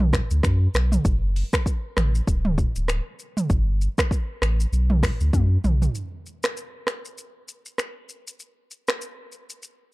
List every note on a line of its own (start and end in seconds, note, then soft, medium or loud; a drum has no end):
0.00 0.21 B1 loud
0.00 mid tom loud
0.13 finger snap medium
0.13 kick loud
0.13 cross-stick loud
0.13 shaker medium
0.31 0.41 D2 medium
0.31 shaker medium
0.43 0.68 F#2 medium
0.43 finger snap medium
0.43 kick loud
0.43 cross-stick medium
0.43 shaker medium
0.74 0.98 B1 medium
0.74 finger snap medium
0.74 cross-stick loud
0.74 shaker medium
0.92 mid tom medium
0.92 shaker medium
1.05 1.43 F#1 loud
1.05 kick loud
1.05 shaker medium
1.36 open hi-hat medium
1.36 shaker soft
1.53 finger snap medium
1.53 kick loud
1.53 cross-stick loud
1.53 shaker medium
1.66 kick medium
1.66 shaker medium
1.97 2.21 A1 medium
1.97 finger snap medium
1.97 cross-stick loud
1.97 mid tom medium
1.97 shaker soft
2.15 shaker medium
2.27 2.66 D1 loud
2.27 kick loud
2.27 shaker medium
2.45 mid tom loud
2.58 kick loud
2.58 shaker medium
2.76 3.00 D1 medium
2.76 shaker medium
2.88 finger snap medium
2.88 cross-stick medium
2.88 shaker medium
3.19 shaker medium
3.37 mid tom loud
3.37 shaker medium
3.50 3.88 G1 loud
3.50 kick loud
3.50 shaker medium
3.81 shaker soft
3.98 finger snap medium
3.98 kick loud
3.98 cross-stick loud
3.98 shaker medium
4.11 kick loud
4.11 shaker medium
4.42 4.66 A1 medium
4.42 finger snap medium
4.42 cross-stick loud
4.42 shaker soft
4.60 shaker medium
4.72 5.11 B1 loud
4.72 shaker medium
4.90 mid tom loud
5.03 finger snap medium
5.03 kick loud
5.03 cross-stick loud
5.03 open hi-hat medium
5.03 shaker medium
5.20 5.31 D2 medium
5.20 shaker medium
5.33 5.58 F#2 medium
5.33 kick loud
5.33 high tom medium
5.33 shaker medium
5.64 5.88 B1 medium
5.64 mid tom loud
5.64 shaker medium
5.82 floor tom loud
5.82 shaker medium
5.95 shaker medium
6.26 shaker soft
6.43 finger snap medium
6.43 cross-stick loud
6.43 shaker medium
6.57 shaker medium
6.87 finger snap medium
6.87 cross-stick medium
6.87 shaker soft
7.05 shaker medium
7.18 shaker medium
7.48 shaker medium
7.66 shaker medium
7.78 finger snap medium
7.78 cross-stick medium
7.78 shaker medium
8.09 shaker medium
8.27 shaker medium
8.40 shaker medium
8.71 shaker soft
8.88 finger snap medium
8.88 cross-stick loud
8.88 shaker medium
9.01 shaker medium
9.32 shaker soft
9.50 shaker medium
9.63 shaker medium